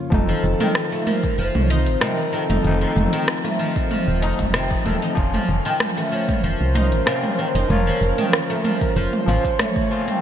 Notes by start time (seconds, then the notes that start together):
Already playing: F2 C#3 F3 A#3 C#4 F4
0.10 F1 D#3 F3 C4 A4, kick, closed hi-hat, mid tom, shaker
0.14 D#4
0.29 F3
0.38 C4
0.44 F1, shaker
0.60 D#3, closed hi-hat, mid tom, shaker
0.75 cross-stick, closed hi-hat, shaker
0.92 A3
1.07 F3 A#4, mid tom, shaker
1.23 kick, closed hi-hat, shaker
1.38 F1 F3 C5, closed hi-hat, shaker
1.55 C2, mid tom
1.64 C#5
1.70 D#4 C5, shaker
1.87 A1, closed hi-hat, shaker
2.00 C3 F3 C4 D#4 A#4, cross-stick, closed hi-hat, mid tom, shaker
2.33 D#3 A4, shaker
2.50 F1 D#4, closed hi-hat, mid tom, shaker
2.63 F1 F3 A3 C4, closed hi-hat, shaker
2.67 D#4
2.81 F3
2.96 F1, mid tom, shaker
3.13 D#3, closed hi-hat, shaker
3.28 cross-stick, closed hi-hat, shaker
3.44 A3, mid tom
3.59 F3, shaker
3.76 kick, closed hi-hat, shaker
3.91 F3, closed hi-hat, mid tom, shaker
4.08 D#1
4.22 F1 F3 A3 C4 D#4, shaker
4.39 F1, kick, closed hi-hat, mid tom, shaker
4.54 C3, cross-stick, closed hi-hat, shaker
4.71 kick
4.85 D#1 D#3 F3 A3 C4 A4, mid tom, shaker
5.02 D#4, closed hi-hat, shaker
5.15 F1 F3 C#4 F4, kick, closed hi-hat, shaker
5.34 F3, mid tom
5.44 A#4
5.49 F1, shaker
5.65 D#3, closed hi-hat, shaker
5.80 cross-stick, closed hi-hat, mid tom, shaker
5.97 A3
6.12 F3 C#5, shaker
6.29 kick, closed hi-hat, mid tom, shaker
6.44 F1 F3 C5, closed hi-hat, shaker
6.61 C2
6.75 D#4, mid tom, shaker
6.92 A1, closed hi-hat, shaker
7.06 C3 F3 A#3 C#4 F4, cross-stick, closed hi-hat, shaker
7.24 mid tom
7.39 D#3, shaker
7.55 F1 D#4, closed hi-hat, shaker
7.67 F1 F3 A#4 C#5, closed hi-hat, mid tom, shaker
7.72 F4
7.87 F3
8.01 F1, shaker
8.18 D#3, closed hi-hat, mid tom, shaker
8.33 cross-stick, closed hi-hat, shaker
8.50 A3
8.65 F3, mid tom, shaker
8.81 kick, closed hi-hat, shaker
8.96 F1 F3 C5, closed hi-hat, shaker
9.13 mid tom
9.26 A1 F3 C#4 F4, shaker
9.45 kick, closed hi-hat, shaker
9.59 A3 C#5, cross-stick, closed hi-hat, mid tom, shaker
9.76 kick
9.90 F3 A#3 C4 C#4 F4, shaker
10.08 C4, closed hi-hat, mid tom, shaker